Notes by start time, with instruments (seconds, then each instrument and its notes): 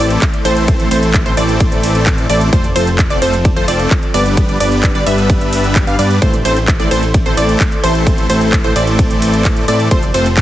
Already playing: analog synth pad A3 E4 C5
0.00 analog synth bass A1, supersaw synth E3 A3 C4 A4 D5, synth pluck D5
0.10 closed hi-hat
0.22 kick, clap, closed hi-hat, ride
0.34 closed hi-hat
0.45 analog synth bass A1, supersaw synth E3 A3 C4 A4 C5, synth pluck C5, open hi-hat, ride
0.57 closed hi-hat
0.68 kick, closed hi-hat, ride
0.80 closed hi-hat
0.91 analog synth bass A1, supersaw synth E3 A3 C4 A4 C5, synth pluck C5, open hi-hat, ride
1.03 closed hi-hat
1.14 kick, clap, closed hi-hat, ride
1.26 analog synth bass A1, supersaw synth E3 A3 C4 A4 C5, synth pluck C5, closed hi-hat
1.37 analog synth bass A1, supersaw synth E3 A3 C4 A4 D5, synth pluck D5, open hi-hat, ride
1.49 closed hi-hat
1.60 kick, closed hi-hat, ride
1.72 closed hi-hat
1.83 open hi-hat, ride
1.95 closed hi-hat
2.06 kick, clap, closed hi-hat, ride
2.18 closed hi-hat
2.30 analog synth bass A1, supersaw synth E3 A3 C4 A4 D5, synth pluck D5, open hi-hat, ride
2.41 closed hi-hat
2.53 analog synth pad F3 C4 A4, supersaw synth F3 A3 C4 A4 C5, synth pluck C5, kick, closed hi-hat, ride
2.64 closed hi-hat
2.76 analog synth bass F1, supersaw synth F3 A3 C4 A4 C5, synth pluck C5, open hi-hat, ride
2.87 closed hi-hat
2.99 kick, clap, closed hi-hat, ride
3.10 analog synth bass F1, supersaw synth F3 A3 C4 A4 D5, synth pluck D5, closed hi-hat
3.22 analog synth bass F1, supersaw synth F3 A3 C4 A4 C5, synth pluck C5, open hi-hat, ride
3.33 closed hi-hat
3.45 kick, closed hi-hat, ride
3.56 analog synth bass F1, supersaw synth F3 A3 C4 A4 C5, synth pluck C5, closed hi-hat
3.68 analog synth bass F1, supersaw synth F3 A3 C4 A4 D5, synth pluck D5, open hi-hat, ride
3.79 closed hi-hat
3.91 kick, clap, closed hi-hat, ride
4.03 closed hi-hat
4.14 analog synth bass G1, supersaw synth G3 B3 D4 B4 D5, synth pluck D5, open hi-hat, ride
4.26 closed hi-hat
4.37 analog synth pad G3 D4 B4, kick, closed hi-hat, ride
4.49 closed hi-hat
4.60 analog synth bass G1, supersaw synth G3 B3 D4 B4 D5, synth pluck D5, open hi-hat, ride
4.72 closed hi-hat
4.83 kick, clap, closed hi-hat, ride
4.95 analog synth bass G1, supersaw synth G3 B3 D4 B4 D5, synth pluck D5, closed hi-hat
5.06 analog synth bass G1, supersaw synth G3 B3 D4 B4 E5, synth pluck E5, open hi-hat, ride
5.18 closed hi-hat
5.30 kick, closed hi-hat, ride
5.41 closed hi-hat
5.53 open hi-hat, ride
5.64 closed hi-hat
5.76 kick, clap, closed hi-hat, ride
5.87 analog synth bass G2, supersaw synth G3 B3 D4 B4 F5, synth pluck F5, closed hi-hat
5.99 analog synth bass G2, supersaw synth G3 B3 D4 B4 D5, synth pluck D5, open hi-hat, ride
6.10 closed hi-hat
6.22 analog synth bass A1, supersaw synth E3 A3 C4 A4 C5, analog synth pad A3 E4 C5, synth pluck C5, kick, closed hi-hat, ride
6.33 closed hi-hat
6.45 analog synth bass A1, supersaw synth E3 A3 C4 A4 C5, synth pluck C5, open hi-hat, ride
6.57 closed hi-hat
6.68 kick, clap, closed hi-hat, ride
6.80 analog synth bass A1, supersaw synth E3 A3 C4 A4 D5, synth pluck D5, closed hi-hat
6.91 analog synth bass A1, supersaw synth E3 A3 C4 A4 C5, synth pluck C5, open hi-hat, ride
7.03 closed hi-hat
7.14 kick, closed hi-hat, ride
7.26 analog synth bass A1, supersaw synth E3 A3 C4 A4 C5, synth pluck C5, closed hi-hat
7.37 analog synth bass A1, supersaw synth E3 A3 C4 A4 D5, synth pluck D5, open hi-hat, ride
7.49 closed hi-hat
7.60 kick, clap, closed hi-hat, ride
7.72 closed hi-hat
7.83 analog synth bass A1, supersaw synth E3 A3 C4 A4 C5, synth pluck C5, open hi-hat, ride
7.95 closed hi-hat
8.07 kick, closed hi-hat, ride
8.18 closed hi-hat
8.30 analog synth bass A1, supersaw synth E3 A3 C4 A4 C5, synth pluck C5, open hi-hat, ride
8.41 closed hi-hat
8.53 kick, clap, closed hi-hat, ride
8.64 analog synth bass A1, supersaw synth E3 A3 C4 A4 C5, synth pluck C5, closed hi-hat
8.76 analog synth bass A1, supersaw synth E3 A3 C4 A4 D5, synth pluck D5, open hi-hat, ride
8.87 closed hi-hat
8.99 kick, closed hi-hat, ride
9.11 closed hi-hat
9.22 open hi-hat, ride
9.34 closed hi-hat
9.45 kick, clap, closed hi-hat, ride
9.57 closed hi-hat
9.68 analog synth bass A2, supersaw synth E3 A3 C4 A4 D5, synth pluck D5, open hi-hat, ride
9.80 closed hi-hat
9.91 analog synth bass F1, supersaw synth F3 A3 C4 A4 C5, analog synth pad F3 C4 A4, synth pluck C5, kick, closed hi-hat, ride
10.03 closed hi-hat
10.14 analog synth bass F1, supersaw synth F3 A3 C4 A4 C5, synth pluck C5, open hi-hat, ride
10.26 closed hi-hat
10.37 kick, clap, closed hi-hat, ride